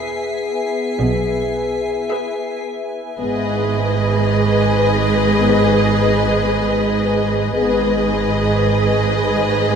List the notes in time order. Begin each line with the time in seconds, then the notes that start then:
Already playing: B3 G#4 B4 E5 G#5 B6 C7
1.01 B1 B2
2.10 G#4 B4 E5
3.19 G#1 G#2 B3 G#4 B4 D#5 G#5
5.38 B3 G#4
7.56 G#1 G#2 B3 G#4 B4 D#5 G#5